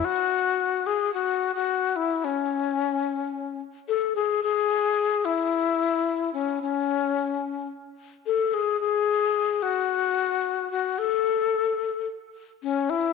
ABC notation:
X:1
M:4/4
L:1/16
Q:1/4=110
K:F#m
V:1 name="Alto flute"
F6 G2 F3 F3 E2 | C8- C2 z2 A2 G2 | G6 E8 C2 | C8 z4 A2 G2 |
G6 F8 F2 | A8 z4 C2 E2 |]